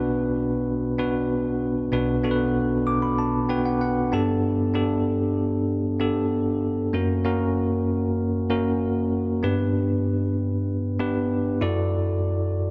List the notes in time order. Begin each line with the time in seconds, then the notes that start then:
Already playing: B1 B2 B3 D4 F#4 B4
0.98 B3 D4 F#4 B4
1.92 B1 B2 B3 D4 F#4 B4
2.23 B3 D4 F#4 A4
2.31 B4
2.87 D6
3.02 B5
3.19 A5
3.49 B3 D4 F#4 B4 G5
3.66 F#5
3.81 F#5
4.12 G2 B3 D4 G4 A4 A5
4.74 B3 D4 G4 A4
6.00 B3 D4 G4 A4
6.93 F#2 A#3 C#4 F#4 A#4
7.24 A#3 C#4 F#4 A#4
8.50 A#3 C#4 F#4 A#4
9.43 G2 B3 D4 G4 B4
10.99 B3 D4 G4 B4
11.61 F#2 E4 F#4 A4 D5